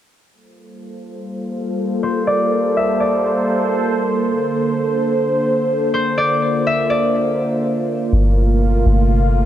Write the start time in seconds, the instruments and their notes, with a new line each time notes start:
0.32 analog synth pad G3 A#3 F4 A4 C5
2.03 harp C5
2.27 harp D5
2.77 harp E5
3.00 harp D5
4.22 analog synth pad D3
5.94 harp C5
6.18 analog synth pad A#3 F4, harp D5
6.67 harp E5
6.90 harp D5
8.13 808-style bass G1, analog synth pad C3 A3 A#3 F4
8.86 808-style bass G1